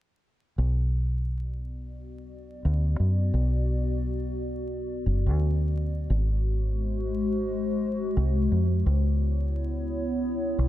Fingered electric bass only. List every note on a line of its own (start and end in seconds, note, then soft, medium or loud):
0.58 2.62 B1 medium
2.65 2.96 D2 medium
3.00 3.30 F#2 medium
3.34 5.03 B1 medium
5.06 5.28 F#1 medium
5.26 6.07 D2 medium
6.10 8.14 G#1 medium
8.17 8.48 C2 medium
8.52 8.82 F2 medium
8.86 10.55 C#2 medium
10.59 10.68 B1 medium